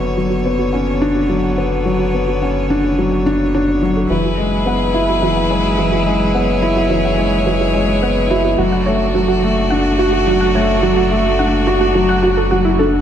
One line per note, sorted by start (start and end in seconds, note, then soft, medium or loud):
0.00 4.07 F#1 medium
0.00 4.06 D3 medium
0.00 0.18 F#3 medium
0.00 0.16 B3 medium
0.00 4.06 B3 medium
0.00 4.06 C#5 medium
0.17 0.34 F#3 medium
0.17 0.24 F#4 medium
0.30 0.38 F#4 medium
0.46 0.72 B3 medium
0.59 0.67 F#4 medium
0.73 1.00 C#4 medium
0.73 0.84 F#5 medium
1.01 1.18 D4 medium
1.01 1.12 F#4 medium
1.16 1.23 F#4 medium
1.30 1.56 F#3 medium
1.44 1.51 F#5 medium
1.58 1.84 B3 medium
1.58 1.65 C#5 medium
1.86 2.02 F#3 medium
1.86 1.93 F#4 medium
1.99 2.07 F#4 medium
2.14 2.41 B3 medium
2.28 2.35 F#4 medium
2.42 2.69 C#4 medium
2.42 2.53 F#5 medium
2.70 2.86 D4 medium
2.70 2.81 F#4 medium
2.84 2.91 F#4 medium
2.99 3.25 F#3 medium
3.12 3.19 F#5 medium
3.26 3.34 C#4 medium
3.26 3.42 D4 medium
3.54 3.81 D4 medium
3.54 3.59 C#5 medium
3.69 3.76 C#5 medium
3.83 4.09 F#3 medium
3.97 4.04 A4 medium
4.09 8.56 F#1 medium
4.09 4.26 E3 medium
4.09 8.54 F#3 medium
4.09 8.54 E4 medium
4.09 4.18 F#4 medium
4.09 8.54 G#4 medium
4.09 6.32 B4 medium
4.26 4.32 F#4 medium
4.38 4.65 G#3 medium
4.66 4.93 B3 medium
4.66 4.78 F#5 medium
4.94 5.10 E4 medium
4.94 5.06 F#4 medium
5.09 5.16 F#4 medium
5.22 5.49 E3 medium
5.22 5.30 F#4 medium
5.37 5.44 F#5 medium
5.50 5.77 G#3 medium
5.50 5.58 C#5 medium
5.78 5.94 E3 medium
5.78 5.86 F#4 medium
5.92 6.00 F#4 medium
6.06 6.33 G#3 medium
6.34 6.61 B3 medium
6.34 8.56 C#5 medium
6.34 6.45 F#5 medium
6.62 6.78 E4 medium
6.62 6.73 F#4 medium
6.77 6.84 F#4 medium
6.90 7.17 E3 medium
6.90 6.98 F#4 medium
7.05 7.12 F#5 medium
7.18 7.45 G#3 medium
7.18 7.26 C#5 medium
7.46 7.62 E3 medium
7.46 7.54 F#4 medium
7.61 7.68 F#4 medium
7.74 8.01 G#3 medium
8.02 8.29 B3 medium
8.02 8.14 F#5 medium
8.30 8.46 E4 loud
8.30 8.42 F#4 medium
8.44 8.52 F#4 medium
8.58 13.01 F#1 medium
8.58 8.85 F#3 medium
8.58 13.01 A3 medium
8.58 13.01 D4 medium
8.58 8.66 F#4 medium
8.58 13.01 F#4 medium
8.72 8.80 F#5 medium
8.86 9.14 A3 medium
8.86 8.94 C#5 medium
9.15 9.31 F#3 medium
9.15 9.22 F#4 medium
9.28 9.36 F#4 medium
9.43 9.70 A3 medium
9.70 9.98 D4 medium
9.70 9.82 F#5 medium
9.99 10.10 F#4 medium
9.99 10.15 F#4 medium
10.13 10.20 F#4 medium
10.27 10.54 F#3 medium
10.27 10.34 F#4 medium
10.41 10.48 F#5 medium
10.55 10.82 A3 medium
10.55 10.62 C#5 medium
10.83 10.99 F#3 medium
10.83 10.90 F#4 medium
10.97 11.04 F#4 medium
11.11 11.38 A3 medium
11.39 11.66 D4 medium
11.39 11.50 F#5 medium
11.67 11.78 F#4 medium
11.67 11.83 F#4 loud
11.81 11.88 F#4 medium
11.95 12.22 F#3 medium
11.95 12.02 F#4 medium
12.09 12.16 F#5 medium
12.23 12.30 F#4 medium
12.23 12.50 F#4 medium
12.37 12.42 A4 medium
12.51 12.78 F#3 medium
12.51 12.56 F#4 medium
12.65 12.76 E4 loud
12.79 12.96 D4 medium
12.79 12.90 A4 medium